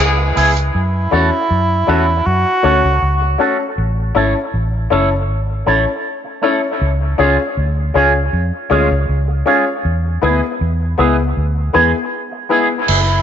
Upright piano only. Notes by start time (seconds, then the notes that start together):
1.11 C#4 F#4 A4 C#5
1.87 C#4 F#4 A4 C#5
2.63 C#4 F#4 A4 C#5
3.38 C#4 F#4 A4 C#5
4.15 C#4 E4 A4 C#5
4.90 C#4 E4 A4 C#5
5.67 C#4 E4 A4 C#5
6.43 C#4 E4 A4 C#5
7.18 C#4 F4 G#4 C#5
7.94 C#4 F4 G#4 C#5
8.70 C#4 F4 G#4 C#5
9.46 C#4 F4 G#4 C#5
10.22 B3 E4 G#4 B4
10.98 B3 E4 G#4 B4
11.73 B3 E4 G#4 B4
12.49 B3 E4 G#4 B4